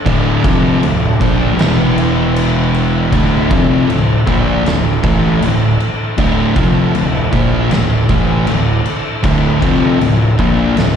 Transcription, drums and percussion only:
0.06 kick medium
0.06 crash medium
0.44 kick loud
0.44 crash medium
0.83 crash medium
1.21 kick medium
1.21 crash medium
1.59 snare loud
1.59 crash medium
1.98 crash medium
2.36 crash medium
2.74 crash medium
3.12 kick medium
3.12 crash medium
3.51 kick loud
3.51 crash medium
3.90 crash medium
4.27 kick medium
4.27 crash soft
4.66 snare loud
4.66 crash medium
5.04 kick loud
5.04 crash medium
5.42 crash medium
5.80 crash medium
6.18 kick loud
6.18 crash medium
6.56 kick loud
6.56 crash medium
6.95 crash medium
7.33 kick loud
7.33 crash medium
7.71 snare loud
7.71 crash medium
8.09 kick loud
8.09 crash medium
8.47 crash medium
8.85 crash medium
9.24 kick medium
9.24 crash medium
9.62 kick loud
9.62 crash medium
10.01 crash medium
10.39 kick medium
10.39 crash soft
10.77 snare loud
10.77 crash medium

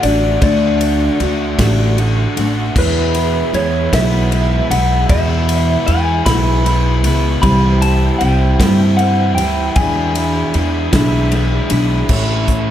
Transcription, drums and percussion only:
0.03 ride medium
0.42 kick loud
0.42 ride loud
0.81 ride medium
1.20 ride medium
1.59 kick medium
1.59 snare loud
1.59 ride loud
1.98 ride medium
2.37 ride medium
2.76 kick loud
2.76 crash loud
3.15 ride medium
3.54 ride medium
3.93 kick medium
3.93 snare loud
3.93 ride loud
4.32 ride medium
4.71 ride medium
5.09 kick loud
5.09 ride loud
5.49 ride medium
5.88 ride medium
6.26 kick medium
6.26 snare loud
6.26 ride loud
6.66 ride medium
7.04 ride medium
7.43 kick loud
7.43 ride loud
7.82 ride medium
8.21 ride medium
8.60 kick medium
8.60 snare loud
8.60 ride medium
8.99 ride medium
9.38 ride medium
9.76 kick loud
9.76 ride loud
10.15 ride medium
10.54 ride medium
10.93 kick medium
10.93 snare loud
10.93 ride loud
11.32 ride medium
11.70 ride medium
12.09 kick loud
12.09 crash loud
12.48 kick medium
12.48 closed hi-hat medium

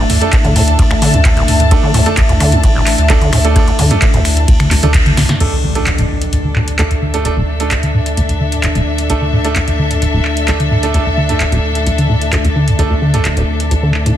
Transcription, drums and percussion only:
0.10 mid tom medium
0.10 open hi-hat loud
0.21 closed hi-hat medium
0.33 kick loud
0.33 clap loud
0.33 closed hi-hat medium
0.33 ride medium
0.45 closed hi-hat soft
0.45 mid tom medium
0.56 open hi-hat loud
0.68 closed hi-hat medium
0.79 kick loud
0.79 closed hi-hat medium
0.79 ride medium
0.91 finger snap medium
1.02 open hi-hat loud
1.14 closed hi-hat medium
1.25 kick loud
1.25 clap loud
1.25 closed hi-hat medium
1.25 ride medium
1.37 closed hi-hat soft
1.48 mid tom loud
1.48 open hi-hat loud
1.60 closed hi-hat medium
1.60 mid tom medium
1.71 kick loud
1.71 closed hi-hat medium
1.71 ride medium
1.94 mid tom medium
1.94 open hi-hat loud
2.06 closed hi-hat medium
2.17 kick loud
2.17 clap loud
2.17 closed hi-hat medium
2.17 ride medium
2.29 closed hi-hat soft
2.29 mid tom medium
2.40 finger snap medium
2.40 open hi-hat loud
2.52 closed hi-hat medium
2.63 kick loud
2.63 closed hi-hat medium
2.63 ride medium
2.87 finger snap medium
2.87 clap medium
2.87 open hi-hat loud
2.98 closed hi-hat medium
3.10 kick loud
3.10 clap loud
3.10 closed hi-hat medium
3.10 ride medium
3.21 closed hi-hat soft
3.33 finger snap medium
3.33 open hi-hat loud
3.45 closed hi-hat medium
3.56 kick loud
3.56 closed hi-hat medium
3.56 ride medium
3.68 closed hi-hat soft
3.79 mid tom medium
3.79 open hi-hat loud
3.91 closed hi-hat medium
4.02 kick loud
4.02 clap loud
4.02 closed hi-hat medium
4.02 ride medium
4.14 closed hi-hat soft
4.14 mid tom medium
4.25 finger snap medium
4.25 open hi-hat loud
4.37 closed hi-hat medium
4.48 kick loud
4.48 closed hi-hat medium
4.48 ride medium
4.60 finger snap medium
4.60 closed hi-hat soft
4.71 clap medium
4.71 open hi-hat loud
4.83 closed hi-hat medium
4.94 kick loud
4.94 clap loud
4.94 closed hi-hat medium
4.94 ride medium
5.06 closed hi-hat soft
5.17 snare medium
5.17 mid tom medium
5.17 open hi-hat loud
5.29 snare medium
5.29 closed hi-hat medium
5.29 mid tom medium
5.40 closed hi-hat medium
5.40 crash medium
5.75 closed hi-hat medium
5.87 clap loud
5.87 closed hi-hat medium
5.98 closed hi-hat soft
6.21 closed hi-hat medium
6.33 closed hi-hat medium
6.56 clap medium
6.68 closed hi-hat medium
6.79 clap loud
6.79 closed hi-hat medium
6.91 closed hi-hat soft
7.14 closed hi-hat medium
7.25 closed hi-hat medium
7.60 closed hi-hat medium
7.71 clap loud
7.71 closed hi-hat medium
7.83 closed hi-hat soft
8.06 closed hi-hat medium
8.17 closed hi-hat medium
8.29 closed hi-hat soft
8.52 closed hi-hat soft
8.63 clap loud
8.63 closed hi-hat medium
8.75 closed hi-hat soft
8.98 closed hi-hat medium
9.10 closed hi-hat medium
9.45 closed hi-hat soft
9.56 clap loud
9.56 closed hi-hat medium
9.68 closed hi-hat soft
9.91 closed hi-hat soft
10.02 closed hi-hat medium
10.25 clap medium
10.37 closed hi-hat soft
10.48 clap loud
10.48 closed hi-hat medium
10.60 closed hi-hat soft
10.83 closed hi-hat medium
10.94 closed hi-hat medium
11.29 closed hi-hat soft
11.40 clap loud
11.40 closed hi-hat medium
11.52 closed hi-hat soft
11.75 closed hi-hat soft
11.87 closed hi-hat medium
11.98 closed hi-hat soft
12.21 closed hi-hat soft
12.33 clap loud
12.33 closed hi-hat medium
12.45 closed hi-hat soft
12.68 closed hi-hat soft
12.79 closed hi-hat medium
13.14 closed hi-hat soft
13.25 clap loud
13.25 closed hi-hat medium
13.37 closed hi-hat soft
13.60 closed hi-hat soft
13.71 closed hi-hat medium
13.94 clap medium
14.06 closed hi-hat soft

